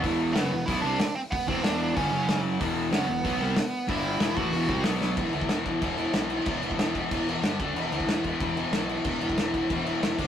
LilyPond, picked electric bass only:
\new Staff \with { instrumentName = "Picked electric bass" } { \clef bass \time 4/4 \key e \minor \tempo 4 = 186 e,,4 fis,,8 e,,8 b,,8 c,8 r4 | r8 e,,4. g,,8 fis,,4. | e,,4 fis,,8 e,,8 b,,8 c,8 r4 | g,,4 e,,8 a,,8 e,,8 c,8 b,,4 |
e,,8 d,8 e,,4 e,,4 b,,4 | e,,8 e,,8 e,,4 e,,4 g,,8 d,8 | e,,8 d,8 e,,4 e,,4 b,,4 | e,,8 e,,8 e,,4 e,,4 e,,8 d,8 | }